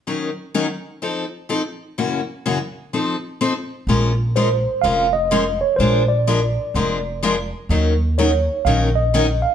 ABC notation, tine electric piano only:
X:1
M:4/4
L:1/8
Q:"Swing" 1/4=126
K:Bbm
V:1 name="Tine electric piano"
z8 | z8 | z2 c2 f e2 d | c =d6 z |
z2 d2 f e2 f |]